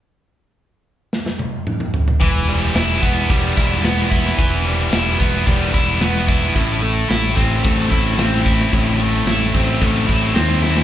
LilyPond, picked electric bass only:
\new Staff \with { instrumentName = "Picked electric bass" } { \clef bass \time 4/4 \key e \minor \tempo 4 = 110 r1 | e,,4 e,,8 e,,8 e,,8 e,,8 e,,4 | e,,4 e,,8 e,,8 e,,8 e,,8 e,,4 | a,,4 a,,8 a,,8 a,,8 a,,8 a,,4 |
a,,4 a,,8 a,,8 a,,8 a,,8 dis,4 | }